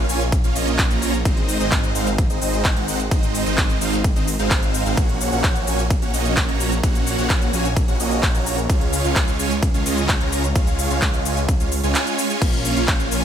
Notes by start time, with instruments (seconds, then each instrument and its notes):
0.09 detuned saw bass A#1, supersaw synth A#3 C#4 F4 C#5 G#5, open hi-hat, shaker
0.21 closed hi-hat, shaker
0.32 kick, closed hi-hat, ride, shaker
0.44 detuned saw bass A#1, supersaw synth A#3 C#4 F4 C#5 F5, closed hi-hat, shaker
0.56 detuned saw bass A#1, supersaw synth A#3 C#4 F4 C#5 D#5, open hi-hat, shaker
0.67 closed hi-hat, shaker
0.79 kick, clap, closed hi-hat, ride, shaker
0.91 detuned saw bass A#1, supersaw synth A#3 C#4 F4 C#5 A#5, closed hi-hat, shaker
1.02 open hi-hat, shaker
1.14 closed hi-hat, shaker
1.25 detuned saw bass G#1, supersaw synth G#3 C4 D#4 C5 D#5, kick, closed hi-hat, ride, shaker
1.37 closed hi-hat
1.49 open hi-hat, shaker
1.60 detuned saw bass G#1, supersaw synth G#3 C4 D#4 C5 D#5, closed hi-hat, shaker
1.72 kick, clap, closed hi-hat, ride, shaker
1.84 closed hi-hat, shaker
1.95 detuned saw bass G#1, supersaw synth G#3 C4 D#4 C5 F5, open hi-hat, shaker
2.07 closed hi-hat, shaker
2.18 kick, closed hi-hat, ride, shaker
2.30 detuned saw bass G#1, supersaw synth G#3 C4 D#4 C5 D#5, closed hi-hat, shaker
2.42 detuned saw bass G#1, supersaw synth G#3 C4 D#4 C5 D#5, open hi-hat, shaker
2.53 closed hi-hat, shaker
2.65 kick, clap, closed hi-hat, ride, shaker
2.77 detuned saw bass G#1, supersaw synth G#3 C4 D#4 C5 F#5, closed hi-hat
2.88 open hi-hat, shaker
3.00 closed hi-hat, shaker
3.11 detuned saw bass G#1, supersaw synth G#3 C4 D#4 C5 D#5, kick, closed hi-hat, ride, shaker
3.23 closed hi-hat, shaker
3.35 open hi-hat, shaker
3.46 detuned saw bass G#1, supersaw synth G#3 C4 D#4 C5 D#5, closed hi-hat, shaker
3.58 kick, clap, closed hi-hat, ride, shaker
3.70 closed hi-hat, shaker
3.81 detuned saw bass G#1, supersaw synth G#3 C4 D#4 C5 F5, open hi-hat, shaker
3.93 closed hi-hat, shaker
4.04 kick, closed hi-hat, ride, shaker
4.16 detuned saw bass G#1, supersaw synth G#3 C4 D#4 C5 D#5, closed hi-hat, shaker
4.28 open hi-hat, shaker
4.39 detuned saw bass G#1, supersaw synth G#3 C4 D#4 C5 F5, closed hi-hat, shaker
4.51 kick, clap, closed hi-hat, ride, shaker
4.63 closed hi-hat, shaker
4.74 open hi-hat, shaker
4.86 detuned saw bass G#1, supersaw synth G#3 C4 D#4 C5 F5, closed hi-hat, shaker
4.97 detuned saw bass A#1, supersaw synth A#3 C#4 F#4 C#5, kick, closed hi-hat, ride, shaker
5.09 closed hi-hat
5.21 open hi-hat, shaker
5.32 detuned saw bass A#1, supersaw synth A#3 C#4 F#4 C#5 F#5, closed hi-hat, shaker
5.44 kick, clap, closed hi-hat, ride, shaker
5.56 closed hi-hat, shaker
5.67 detuned saw bass A#1, supersaw synth A#3 C#4 F#4 C#5 G#5, open hi-hat, shaker
5.79 closed hi-hat, shaker
5.90 kick, closed hi-hat, ride, shaker
6.02 detuned saw bass A#1, supersaw synth A#3 C#4 F#4 C#5 F#5, closed hi-hat, shaker
6.14 detuned saw bass A#1, supersaw synth A#3 C#4 F#4 C#5 D#5, open hi-hat, shaker
6.25 closed hi-hat, shaker
6.37 kick, clap, closed hi-hat, ride, shaker
6.49 detuned saw bass A#1, supersaw synth A#3 C#4 F#4 C#5 A#5, closed hi-hat
6.60 open hi-hat, shaker
6.72 closed hi-hat, shaker
6.83 detuned saw bass A#1, supersaw synth A#3 C#4 F#4 C#5 F#5, kick, closed hi-hat, ride, shaker
6.95 closed hi-hat, shaker
7.07 open hi-hat, shaker
7.18 detuned saw bass A#1, supersaw synth A#3 C#4 F#4 C#5 F#5, closed hi-hat, shaker
7.30 kick, clap, closed hi-hat, ride, shaker
7.42 closed hi-hat, shaker
7.53 detuned saw bass A#1, supersaw synth A#3 C#4 F#4 C#5 G#5, open hi-hat, shaker
7.65 closed hi-hat, shaker
7.77 kick, closed hi-hat, ride, shaker
7.88 detuned saw bass A#1, supersaw synth A#3 C#4 F#4 C#5 F#5, closed hi-hat, shaker
8.00 detuned saw bass A#1, supersaw synth A#3 C#4 F#4 C#5 D#5, open hi-hat, shaker
8.11 closed hi-hat, shaker
8.23 kick, clap, closed hi-hat, ride, shaker
8.35 detuned saw bass A#1, supersaw synth A#3 C#4 F#4 C#5 A#5, closed hi-hat, shaker
8.46 open hi-hat, shaker
8.58 closed hi-hat, shaker
8.69 detuned saw bass C#2, supersaw synth G#3 C#4 F4 C#5 F5, kick, closed hi-hat, ride, shaker
8.81 closed hi-hat
8.93 open hi-hat, shaker
9.04 detuned saw bass C#2, supersaw synth G#3 C#4 F4 C#5 F5, closed hi-hat, shaker
9.16 kick, clap, closed hi-hat, ride, shaker
9.28 closed hi-hat, shaker
9.39 detuned saw bass C#2, supersaw synth G#3 C#4 F4 C#5 G#5, open hi-hat, shaker
9.51 closed hi-hat, shaker
9.63 kick, closed hi-hat, ride, shaker
9.74 detuned saw bass C#2, supersaw synth G#3 C#4 F4 C#5 F5, closed hi-hat, shaker
9.86 detuned saw bass C#2, supersaw synth G#3 C#4 F4 C#5 D#5, open hi-hat, shaker
9.97 closed hi-hat, shaker
10.09 kick, clap, closed hi-hat, ride, shaker
10.21 detuned saw bass C#2, supersaw synth G#3 C#4 F4 C#5 A#5, closed hi-hat
10.32 open hi-hat, shaker
10.44 closed hi-hat, shaker
10.56 detuned saw bass C#2, supersaw synth G#3 C#4 F4 C#5 F5, kick, closed hi-hat, ride, shaker
10.67 closed hi-hat, shaker
10.79 open hi-hat, shaker
10.90 detuned saw bass C#2, supersaw synth G#3 C#4 F4 C#5 F5, closed hi-hat, shaker
11.02 kick, clap, closed hi-hat, ride, shaker
11.14 closed hi-hat, shaker
11.25 detuned saw bass C#2, supersaw synth G#3 C#4 F4 C#5 G#5, open hi-hat, shaker
11.37 closed hi-hat, shaker
11.49 kick, closed hi-hat, ride, shaker
11.60 detuned saw bass C#2, supersaw synth G#3 C#4 F4 C#5 F5, closed hi-hat, shaker
11.72 open hi-hat, shaker
11.83 detuned saw bass C#2, supersaw synth G#3 C#4 F4 C#5 G#5, closed hi-hat, shaker
11.95 clap, closed hi-hat, ride, shaker
12.07 closed hi-hat, shaker
12.18 open hi-hat, shaker
12.30 supersaw synth G#3 C#4 F4 C#5 G#5, closed hi-hat, shaker
12.42 detuned saw bass A#1, supersaw synth A#3 C#4 F4 C#5, kick, closed hi-hat, crash, ride, shaker
12.53 closed hi-hat
12.65 open hi-hat, shaker
12.77 detuned saw bass A#1, supersaw synth A#3 C#4 F4 C#5 F5, closed hi-hat, shaker
12.88 kick, clap, closed hi-hat, ride, shaker
13.00 closed hi-hat, shaker
13.11 detuned saw bass A#1, supersaw synth A#3 C#4 F4 C#5 G#5, open hi-hat, shaker